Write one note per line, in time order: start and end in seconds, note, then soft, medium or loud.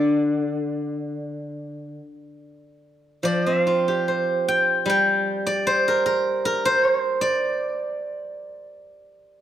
0.00 1.98 D3 medium
0.00 1.47 D5 medium
3.23 5.64 F3 medium
3.23 3.62 D5 medium
3.46 5.06 C4 soft
3.62 4.92 F5 medium
3.67 5.26 F4 soft
3.88 5.45 G4 soft
4.08 5.65 C5 soft
4.48 4.89 G5 medium
4.86 7.18 G3 medium
4.86 6.45 G5 medium
5.47 7.21 D5 medium
5.67 6.65 C5 medium
5.88 6.05 A#4 medium
6.06 6.45 A#4 medium
6.45 8.58 A#4 medium
6.65 8.63 C5 loud
7.21 9.06 D5 medium